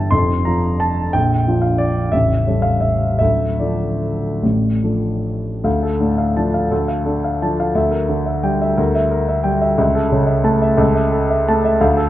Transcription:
Already playing: G1 G2 E3 C#4 A4 E5 G5 A5
0.11 F1 F2 C6
0.45 F3 D4 F4 A#5
0.80 A5
1.13 A#0 A#1 G5
1.47 F3 D4 F4
1.62 F5
1.78 D5
2.12 A0 A1 E5
2.47 G3 C#4 A4
2.62 F5
2.81 E5
3.19 D1 D2 E5
3.59 F3 D4 A4 D5
4.43 A1 A2
4.83 F3 D4 A4
5.64 D2 F5
5.83 A4
6.00 A2 D4
6.18 F5
6.36 F3 D4 A5
6.54 F5
6.71 D2 A4
6.88 F5
7.06 D4 A4
7.24 F5
7.42 F3 D4 A5
7.60 F5
7.75 D2 E5
7.91 A#4
8.09 D3
8.26 E5
8.43 G3 G5
8.62 E5
8.77 D2 A#4
8.95 E5
9.11 A#4
9.29 E5
9.44 G3 G5
9.61 E5
9.78 C#2 E5
9.95 A4
10.12 C#3
10.27 E5
10.44 A3 A5
10.62 E5
10.77 C#2 A4
10.95 E5
11.12 A4
11.30 E5
11.48 A3 A5
11.65 E5
11.81 D2 F5
11.97 A4

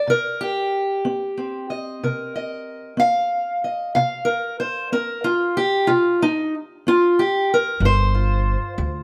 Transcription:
0.07 C3 A#4
0.41 G4
1.05 C4
1.37 C4
1.70 D#5
2.03 C3 A#4
2.35 D#5
2.97 C4 F5
3.64 D#5
3.95 C3 F5
4.25 A#4
4.60 C5
4.92 C4 A#4
5.24 F4
5.57 G4
5.87 C3 F4
6.22 D#4
6.87 C4 F4
7.19 G4
7.54 A#4
7.80 G1 G2
7.85 C5
8.15 F4
8.78 D2 G3

